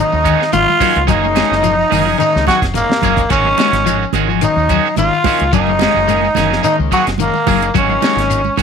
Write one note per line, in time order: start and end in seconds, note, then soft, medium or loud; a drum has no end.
0.00 0.22 D#3 medium
0.00 0.28 F#3 medium
0.00 0.28 A#3 medium
0.00 0.28 C#4 medium
0.00 0.28 D#4 medium
0.00 0.50 D#4 medium
0.00 0.51 D#4 medium
0.12 0.34 D#2 medium
0.12 shekere soft
0.24 0.42 D#3 medium
0.24 0.49 D#3 medium
0.24 0.42 G#3 medium
0.24 0.42 C#4 medium
0.24 0.43 F#4 medium
0.24 kick medium
0.24 closed hi-hat soft
0.24 shekere medium
0.40 snare soft
0.40 claves medium
0.40 shekere soft
0.53 0.65 G#1 medium
0.53 0.77 D#3 medium
0.53 0.69 F#3 medium
0.53 0.69 A#3 medium
0.53 0.69 C#4 medium
0.53 0.69 D#4 medium
0.53 1.04 F4 loud
0.53 1.06 F4 medium
0.53 closed hi-hat medium
0.53 high conga medium
0.53 shekere medium
0.69 high conga medium
0.69 shekere soft
0.79 0.98 D#3 medium
0.79 1.03 F#3 medium
0.79 1.05 F#3 medium
0.79 0.98 G#3 medium
0.79 1.03 A#3 medium
0.79 1.03 C#4 medium
0.79 0.98 C#4 medium
0.79 1.03 D#4 medium
0.79 0.98 F#4 medium
0.79 muted fingered electric bass stroke soft
0.79 kick medium
0.79 open hi-hat medium
0.79 high conga loud
0.79 low conga medium
0.79 claves medium
0.79 shekere medium
0.95 1.06 C#2 loud
0.95 closed hi-hat soft
0.95 shekere soft
1.07 1.41 F#1 loud
1.07 1.25 D#3 medium
1.07 1.32 F#3 medium
1.07 1.25 A#3 medium
1.07 1.25 C#4 medium
1.07 2.16 D#4 loud
1.07 2.16 D#4 medium
1.07 1.25 G#4 medium
1.07 kick loud
1.07 closed hi-hat medium
1.07 shekere loud
1.24 1.76 G#3 medium
1.24 1.76 A#3 medium
1.24 1.76 C#4 medium
1.24 1.76 D#4 loud
1.24 high conga medium
1.24 claves medium
1.24 shekere soft
1.34 1.53 D#3 medium
1.34 1.60 G#3 medium
1.34 1.53 A#3 medium
1.34 1.53 C#4 medium
1.34 1.54 G#4 medium
1.34 snare medium
1.34 closed hi-hat medium
1.34 high conga loud
1.34 shekere medium
1.51 1.83 F#1 medium
1.51 snare soft
1.51 shekere soft
1.63 1.88 F3 medium
1.63 closed hi-hat medium
1.63 claves medium
1.63 shekere medium
1.80 shekere soft
1.90 2.14 F#1 medium
1.90 2.05 D#3 medium
1.90 2.06 A#3 medium
1.90 2.04 C#4 medium
1.90 2.04 G#4 medium
1.90 open hi-hat medium
1.90 high conga medium
1.90 low conga medium
1.90 shekere medium
2.05 2.17 F3 medium
2.05 2.22 C#4 soft
2.05 2.22 G#4 medium
2.05 shekere soft
2.18 2.43 D#3 medium
2.18 2.50 G#3 medium
2.18 2.50 A#3 medium
2.18 2.50 C#4 medium
2.18 2.45 D#4 loud
2.18 2.50 D#4 medium
2.18 2.47 D#4 medium
2.18 closed hi-hat medium
2.18 claves medium
2.18 shekere medium
2.36 2.45 C#2 medium
2.36 snare soft
2.36 shekere soft
2.47 2.64 D#3 medium
2.47 2.71 F#3 medium
2.47 2.65 C#4 medium
2.47 2.60 F#4 loud
2.47 2.60 F#4 medium
2.47 2.65 G#4 medium
2.47 muted clean electric guitar stroke medium
2.47 kick medium
2.47 snare soft
2.47 closed hi-hat medium
2.47 high conga medium
2.47 shekere medium
2.62 2.83 F#1 medium
2.62 kick medium
2.62 snare soft
2.62 closed hi-hat medium
2.62 claves medium
2.62 shekere soft
2.74 2.91 G#3 medium
2.74 2.91 A#3 medium
2.74 3.27 A#3 medium
2.74 2.91 C#4 medium
2.74 2.91 D#4 medium
2.74 muted clean electric guitar stroke medium
2.74 closed hi-hat medium
2.74 low conga medium
2.74 shekere loud
2.90 snare medium
2.90 low conga medium
2.90 shekere soft
3.02 3.25 F#1 medium
3.02 3.27 F#3 medium
3.02 3.26 G#3 medium
3.02 3.26 A#3 medium
3.02 3.20 A#3 medium
3.02 3.26 C#4 medium
3.02 3.20 C#4 medium
3.02 3.26 D#4 medium
3.02 3.21 G#4 medium
3.02 muted clean electric guitar stroke medium
3.02 kick medium
3.02 closed hi-hat medium
3.02 low conga loud
3.02 claves medium
3.02 shekere medium
3.17 kick medium
3.17 closed hi-hat medium
3.17 low conga medium
3.17 shekere soft
3.29 3.52 G#1 loud
3.29 3.47 D#3 medium
3.29 3.47 G#3 medium
3.29 3.48 C#4 medium
3.29 4.11 C#4 medium
3.29 4.12 C#4 medium
3.29 3.48 F#4 medium
3.29 muted clean electric guitar stroke medium
3.29 kick medium
3.29 closed hi-hat medium
3.29 shekere loud
3.44 3.97 F#3 medium
3.44 3.98 A#3 medium
3.44 3.98 C#4 medium
3.44 3.98 D#4 medium
3.44 high conga medium
3.44 claves medium
3.44 shekere soft
3.58 3.75 D#3 medium
3.58 3.76 G#3 medium
3.58 3.83 G#3 medium
3.58 3.76 C#4 medium
3.58 3.76 F#4 medium
3.58 snare medium
3.58 closed hi-hat medium
3.58 high conga medium
3.58 shekere medium
3.72 4.04 G#1 medium
3.72 snare soft
3.72 closed hi-hat medium
3.72 low conga medium
3.72 shekere soft
3.86 4.03 D#3 soft
3.86 4.10 F3 medium
3.86 4.03 G#3 medium
3.86 4.04 F#4 medium
3.86 closed hi-hat medium
3.86 claves medium
3.86 shekere loud
4.02 shekere soft
4.13 4.46 G#1 medium
4.13 4.28 D#3 medium
4.13 4.27 D#3 medium
4.13 4.29 G#3 medium
4.13 4.28 C#4 medium
4.13 4.28 F#4 medium
4.13 closed hi-hat medium
4.13 high conga medium
4.13 low conga medium
4.13 shekere medium
4.28 4.40 F3 medium
4.28 4.45 G#3 soft
4.28 4.45 C#4 soft
4.28 4.45 F#4 medium
4.28 shekere soft
4.41 4.66 D#3 medium
4.41 4.72 F#3 medium
4.41 4.72 A#3 medium
4.41 4.72 C#4 medium
4.41 4.73 D#4 medium
4.41 4.94 D#4 medium
4.41 closed hi-hat medium
4.41 claves medium
4.41 shekere medium
4.57 4.78 D#2 medium
4.57 shekere soft
4.69 4.87 D#3 medium
4.69 4.94 F#3 medium
4.69 4.87 G#3 medium
4.69 4.87 C#4 medium
4.69 4.87 F#4 medium
4.69 kick medium
4.69 closed hi-hat medium
4.69 shekere medium
4.85 claves medium
4.85 shekere soft
4.96 5.09 G#1 medium
4.96 5.22 D#3 medium
4.96 5.14 F#3 medium
4.96 5.14 A#3 medium
4.96 5.14 C#4 medium
4.96 5.14 D#4 medium
4.96 5.49 F4 loud
4.96 5.50 F4 medium
4.96 closed hi-hat medium
4.96 high conga medium
4.96 shekere medium
5.13 shekere soft
5.24 5.42 D#3 medium
5.24 5.48 F#3 medium
5.24 5.43 G#3 medium
5.24 5.48 A#3 medium
5.24 5.48 C#4 medium
5.24 5.43 C#4 medium
5.24 5.49 D#4 medium
5.24 5.43 F#4 medium
5.24 muted fingered electric bass stroke soft
5.24 muted clean electric guitar stroke medium
5.24 kick medium
5.24 open hi-hat medium
5.24 high conga loud
5.24 low conga medium
5.24 claves medium
5.24 shekere medium
5.40 5.51 C#2 medium
5.40 closed hi-hat medium
5.40 shekere soft
5.53 5.86 F#1 loud
5.53 5.70 D#3 medium
5.53 5.77 F#3 medium
5.53 5.70 A#3 medium
5.53 5.70 C#4 medium
5.53 6.60 D#4 medium
5.53 6.61 D#4 loud
5.53 5.71 G#4 medium
5.53 kick loud
5.53 closed hi-hat medium
5.53 shekere loud
5.67 6.21 G#3 medium
5.67 6.21 A#3 medium
5.67 6.21 C#4 medium
5.67 6.21 D#4 medium
5.67 high conga medium
5.67 claves medium
5.67 shekere soft
5.79 5.98 D#3 medium
5.79 6.05 G#3 medium
5.79 5.98 A#3 medium
5.79 5.99 C#4 medium
5.79 5.99 G#4 medium
5.79 snare medium
5.79 closed hi-hat soft
5.79 high conga loud
5.79 shekere medium
5.94 6.27 F#1 medium
5.94 low conga medium
5.94 shekere soft
6.08 6.26 D#3 medium
6.08 6.32 G#3 medium
6.08 6.26 A#3 medium
6.08 6.26 C#4 medium
6.08 6.26 G#4 medium
6.08 closed hi-hat medium
6.08 claves medium
6.08 shekere medium
6.22 high conga medium
6.22 shekere soft
6.35 6.58 F#1 medium
6.35 6.51 D#3 medium
6.35 6.49 D#3 medium
6.35 6.50 A#3 medium
6.35 6.49 C#4 medium
6.35 6.49 G#4 medium
6.35 snare soft
6.35 closed hi-hat medium
6.35 high conga medium
6.35 low conga medium
6.35 shekere medium
6.50 6.62 F3 medium
6.50 6.67 A#3 soft
6.50 6.67 C#4 soft
6.50 6.66 G#4 medium
6.50 snare soft
6.50 shekere soft
6.63 6.89 D#3 medium
6.63 6.94 G#3 medium
6.63 6.94 A#3 medium
6.63 6.94 C#4 medium
6.63 6.94 D#4 medium
6.63 6.76 D#4 loud
6.63 6.78 D#4 medium
6.63 closed hi-hat medium
6.63 claves medium
6.63 shekere medium
6.79 6.89 C#2 medium
6.79 shekere soft
6.91 7.09 D#3 medium
6.91 7.16 F#3 medium
6.91 7.09 A#3 medium
6.91 7.09 C#4 medium
6.91 7.05 F#4 loud
6.91 7.06 F#4 medium
6.91 7.09 G#4 medium
6.91 kick medium
6.91 closed hi-hat medium
6.91 shekere medium
7.06 7.28 F#1 medium
7.06 snare soft
7.06 closed hi-hat medium
7.06 claves medium
7.06 shekere soft
7.18 7.44 D#3 medium
7.18 7.36 G#3 medium
7.18 7.36 A#3 medium
7.18 7.72 A#3 medium
7.18 7.35 C#4 medium
7.18 7.36 D#4 medium
7.18 closed hi-hat medium
7.18 high conga medium
7.18 shekere medium
7.34 high conga medium
7.34 shekere soft
7.46 7.69 F#1 medium
7.46 7.64 D#3 medium
7.46 7.71 F#3 medium
7.46 7.70 G#3 medium
7.46 7.64 A#3 medium
7.46 7.70 A#3 medium
7.46 7.65 C#4 medium
7.46 7.70 C#4 medium
7.46 7.71 D#4 medium
7.46 7.65 G#4 medium
7.46 kick medium
7.46 open hi-hat medium
7.46 high conga loud
7.46 low conga medium
7.46 claves medium
7.46 shekere medium
7.62 closed hi-hat medium
7.62 shekere soft
7.74 7.97 G#1 loud
7.74 7.92 D#3 medium
7.74 7.99 F#3 medium
7.74 7.92 G#3 medium
7.74 7.92 C#4 medium
7.74 8.56 C#4 medium
7.74 7.92 F#4 medium
7.74 kick loud
7.74 closed hi-hat medium
7.74 shekere medium
7.89 8.42 F#3 medium
7.89 8.42 A#3 medium
7.89 8.42 C#4 medium
7.89 8.42 D#4 loud
7.89 high conga medium
7.89 claves medium
7.89 shekere soft
8.02 8.20 D#3 medium
8.02 8.26 G#3 medium
8.02 8.20 G#3 medium
8.02 8.20 C#4 medium
8.02 8.20 F#4 medium
8.02 snare medium
8.02 closed hi-hat medium
8.02 high conga loud
8.02 shekere medium
8.16 8.48 G#1 medium
8.16 snare soft
8.16 closed hi-hat medium
8.16 shekere soft
8.30 closed hi-hat medium
8.30 claves medium
8.30 shekere medium
8.44 high conga medium
8.44 shekere soft
8.57 8.62 G#1 medium
8.57 8.62 D#3 medium
8.57 8.62 G#3 medium
8.57 8.62 C#4 medium
8.57 8.62 F#4 medium
8.57 closed hi-hat medium
8.57 high conga medium
8.57 low conga medium
8.57 shekere medium